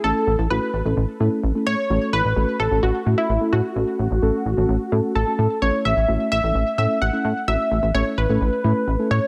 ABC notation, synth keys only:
X:1
M:4/4
L:1/16
Q:1/4=129
K:A
V:1 name="Synth keys"
[A,CEA]2 z2 [A,CEF]2 z [A,CEA]2 z [A,CEA]2 z [A,CEA]2 z | [A,CFA]2 z2 [A,CFA]2 z [A,CFA]2 z [A,CFA]2 z [A,CFA]2 z | [A,CFA]2 z2 [A,CFA]2 z [A,CFA]2 z [A,CFA]2 z [A,CFA]2 z | [A,CEA]2 z2 [A,CEF]2 z [A,CEA]2 z [A,CEA]2 z [A,CEA]2 z |
[A,CEF]2 z2 [A,CEA]2 z [A,CEA]2 z [A,CEA]2 z [A,CEA]2 z |]